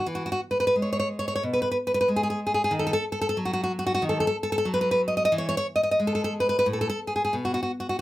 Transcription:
\new Staff \with { instrumentName = "Nylon-string guitar" } { \time 4/4 \key e \major \tempo 4 = 91 << { r32 fis'32 fis'32 fis'32 r32 b'32 b'32 b'32 r32 cis''32 cis''32 cis''32 r32 cis''32 cis''32 cis''32 r32 b'32 b'32 b'32 r32 b'32 b'32 b'32 r32 gis'32 gis'32 gis'32 r32 gis'32 gis'32 gis'32 | r32 a'32 a'32 a'32 r32 a'32 a'32 a'32 r32 fis'32 fis'32 fis'32 r32 fis'32 fis'32 fis'32 r32 a'32 a'32 a'32 r32 a'32 a'32 a'32 r32 b'32 b'32 b'32 r32 dis''32 dis''32 dis''32 | r32 cis''32 cis''32 cis''32 r32 dis''32 dis''32 dis''32 r32 a'32 a'32 a'32 r32 b'32 b'32 b'32 r32 a'32 a'32 a'32 r32 gis'32 gis'32 gis'32 r32 fis'32 fis'32 fis'32 r32 fis'32 fis'32 r32 | } \\ { e8 r8 gis4 b,8 r8 gis4 | dis8 r8 fis4 dis8 r8 fis4 | e8 r8 gis4 a,8 r8 b,8 r8 | } >> }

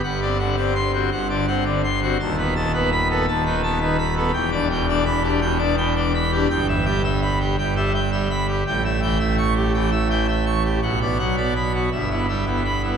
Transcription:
<<
  \new Staff \with { instrumentName = "Pipe organ" } { \time 4/4 \key e \minor \tempo 4 = 111 \tuplet 3/2 { fis''8 d''8 fis''8 d''8 c'''8 fis'8 fis''8 d''8 fis''8 d''8 c'''8 fis'8 } | \tuplet 3/2 { a''8 b'8 a''8 b'8 b''8 a'8 a''8 b'8 a''8 b'8 b''8 a'8 } | \tuplet 3/2 { g''8 d''8 g''8 d''8 b''8 g'8 g''8 d''8 g''8 d''8 b''8 g'8 } | \key e \dorian \tuplet 3/2 { g''8 e''8 g''8 e''8 b''8 g'8 g''8 e''8 g''8 e''8 b''8 g'8 } |
\tuplet 3/2 { g''8 e''8 g''8 e''8 cis'''8 g'8 g''8 e''8 g''8 e''8 cis'''8 g'8 } | \tuplet 3/2 { fis''8 d''8 fis''8 d''8 b''8 fis'8 e''8 e'8 e''8 e'8 b''8 e'8 } | }
  \new Staff \with { instrumentName = "Pipe organ" } { \clef bass \time 4/4 \key e \minor << { \tuplet 3/2 { g,8 c'8 d8 c'8 r8 c'8 g,8 d8 c'8 d8 r8 c'8 } | \tuplet 3/2 { dis,8 b8 dis8 b8 r8 b8 dis,8 dis8 b8 dis8 r8 b8 } | \tuplet 3/2 { e,8 d'8 b,8 d'8 r8 d'8 b,8 d'8 b,8 d'8 r8 d'8 } | \key e \dorian \tuplet 3/2 { g,4 g8 } r4 \tuplet 3/2 { g,8 g8 r8 } g8 r8 |
\tuplet 3/2 { a,4 e8 } r4 \tuplet 3/2 { e8 r8 e8 } r4 | \tuplet 3/2 { b,8 b8 fis8 b8 r8 b8 g,8 b8 g8 b8 r8 b8 } | } \\ { g,,2 g,,2 | dis,,2 dis,,2 | e,,1 | g,,2 g,,2 |
a,,1 | b,,2 g,,2 | } >> }
>>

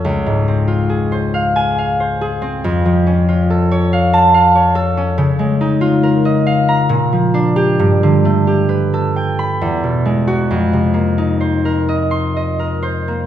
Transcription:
\new Staff \with { instrumentName = "Harp" } { \time 3/4 \key f \minor \tempo 4 = 68 << { r4. r16 aes''4~ aes''16 | r4. r16 a''4~ a''16 | r4. r16 bes''4 g'16~ | g'4.~ g'16 b''4 fis'16 |
r4. r16 c'''4~ c'''16 | } \\ { <des, f cis' f' cis'' f''>16 aes,16 c'16 f'16 aes'16 c''16 f''8 f''16 c''16 aes'16 c'16 | f,16 f16 cis'16 f'16 a'16 cis''16 f''8 f''16 cis''16 a'16 cis'16 | des16 aes16 ees'16 f'16 bes'16 ees''16 f''8 bes,16 f16 d'8 | g,16 d16 a16 g'16 b'16 a'16 g''8 e,16 b,16 gis8 |
f,16 c16 bes16 ees'16 c''16 bes'16 ees''8 ees''16 bes'16 c''16 bes16 | } >> }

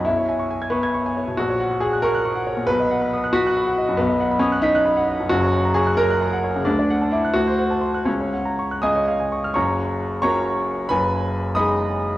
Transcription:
\new Staff \with { instrumentName = "Grand piano" } { \time 6/8 \key b \major \tempo 4. = 90 << { b,,16 cis''16 gis''16 cis'''16 gis''16 gis'''16 cis'''16 gis'''16 cis'''16 gis''16 cis''16 b,16 | ais,,16 cis''16 fis''16 cis'''16 fis''16 fis'''16 cis'''16 fis'''16 cis'''16 fis''16 cis''16 ais,16 | b,,16 dis''16 fis''16 b''16 dis'''16 fis'''16 b'''16 fis'''16 b''16 fis''16 dis''16 fis,16 | \key fis \major b,,16 dis''16 fis''16 b''16 dis'''16 fis'''16 b'''16 fis'''16 b''16 fis''16 dis''16 fis,16 |
<fis,, fis,>16 cis''16 fis''16 ais''16 cis'''16 fis'''16 ais'''16 fis'''16 ais''16 fis''16 cis''16 cis16 | d,16 d''16 fis''16 a''16 d'''16 fis'''16 d,16 c''16 fis''16 a''16 c'''16 fis'''16 | cis,16 cis''16 fis''16 ais''16 cis'''16 fis'''16 cis,16 cis''16 eis''16 gis''16 cis'''16 eis'''16 | <fis,, fis,>4. <cis' fis' ais'>4. |
<fis,, fis,>4. <gis dis' gis'>4. | } \\ { e'4. b4. | fis'4 gis'8 ais'4. | b'4. fis'4. | b4 cis'8 dis'4. |
fis'4 gis'8 ais'4. | d'4 e'8 fis'4. | cis'4. <dis'' gis'' dis'''>4. | <cis'' ais'' cis'''>4. <cis'' ais'' cis'''>4. |
<b' gis'' b''>4. <dis'' b'' dis'''>4. | } >> }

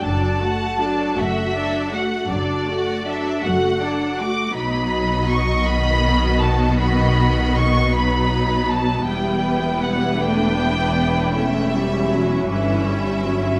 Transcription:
<<
  \new Staff \with { instrumentName = "Violin section" } { \time 12/8 \key d \major \tempo 4. = 53 a''4. e''4 fis''8 d''4 e''8 fis''4 d'''8 | b''4 cis'''8 b''4 a''8 b''4 cis'''8 b''4 a''8 | g''4 fis''8 g''2 r2 r8 | }
  \new Staff \with { instrumentName = "Violin section" } { \time 12/8 \key d \major << { d''8 fis''8 d''8 fis''8 d''8 fis''8 d''8 fis''8 d''8 fis''8 d''8 fis''8 | dis''2. dis''4. b'4. | b'2. e''4. e''4. | } \\ { a'8 fis'8 a'8 fis'8 a'8 fis'8 a'8 fis'8 a'8 fis'8 a'8 fis'8 | dis'4. fis'2. dis'4. | e'1~ e'8 e'4. | } >> }
  \new Staff \with { instrumentName = "Viola section" } { \time 12/8 \key d \major << { d'8 fis'8 d'8 fis'8 d'8 fis'8 d'8 fis'8 d'8 fis'8 d'8 fis'8 | b1.~ | b4. d'4. cis'2. | } \\ { fis8 a8 fis8 a8 fis8 a8 fis8 a8 fis8 a8 fis8 a8 | fis4. dis4. dis4. fis4. | g4. a8 b8 b8 a8 g8 fis8 e8 g8 fis8 | } >> }
  \new Staff \with { instrumentName = "Cello section" } { \clef bass \time 12/8 \key d \major fis,4. fis,4. fis,4. fis,4. | b,1. | e,1~ e,8 g,4. | }
  \new Staff \with { instrumentName = "Double bass section" } { \clef bass \time 12/8 \key d \major fis,,4. fis,,4. fis,,4. fis,,4. | b,,1. | e,,1~ e,,8 g,,4. | }
>>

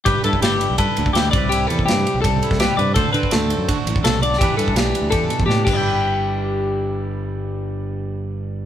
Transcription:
<<
  \new Staff \with { instrumentName = "Clean electric guitar" } { \time 4/4 \key g \major \tempo 4 = 166 g'8 a'8 g'4 a'4 g'8 d''8 | g'8 a'8 g'4 a'4 g'8 d''8 | a'8 b'8 a'4 r4 a'8 d''8 | g'8 a'8 g'4 a'4 g'8 <g' b' d'' g''>8~ |
<g' b' d'' g''>1~ | <g' b' d'' g''>1 | }
  \new Staff \with { instrumentName = "Clean electric guitar" } { \time 4/4 \key g \major << { b'8 e'4. b'4 e'8 <g e' g' b'>8 | e'4. g'4 e'8 b'8 b'8 | c''8 c'4. fis'2 | <g d' g' b'>8 d'4. g'4 d'8 <g e' g' b'>8~ |
<g e' g' b'>1~ | <g e' g' b'>1 | } \\ { g,4 g4. d4 c8~ | c8 g4. g4. c8 | d4 a4. a,8 c8 d8 | e4 g4. b,4 g,8~ |
g,1~ | g,1 | } >> }
  \new Staff \with { instrumentName = "Fingered electric bass" } { \clef bass \time 4/4 \key g \major g,,16 r16 g,16 r16 g,,8. b,,16 g,16 r16 d,16 d,16 d,8 c,8~ | c,8 e,8 g,8 r16 b,,16 c,8 r16 c,8 r16 g,8 | d,16 r16 d16 r16 d,8. fis,16 d16 r16 a,,16 a,,16 b,,4 | e,16 r16 g,8 b,,8 r16 d,16 e,8 r16 e,16 a,8 g,,8~ |
g,,1~ | g,,1 | }
  \new DrumStaff \with { instrumentName = "Drums" } \drummode { \time 4/4 <bd cymr>8 cymr16 bd16 <cymr sn>8 cymr8 <bd cymr>8 cymr16 bd16 <cymr sn>8 <bd cymr>8 | cymr8 cymr16 bd16 <cymr sn>8 cymr8 <bd cymr>8 cymr16 <bd sn>16 <cymr sn>8 cymr8 | <bd cymr>8 cymr16 bd16 <cymr sn>8 cymr8 <bd cymr>8 cymr16 bd16 <cymr sn>8 cymr16 sn16 | <bd cymr>8 cymr16 bd16 <cymr sn>8 cymr8 <bd cymr>8 cymr16 bd16 sn8 <cymc bd>8 |
r4 r4 r4 r4 | r4 r4 r4 r4 | }
>>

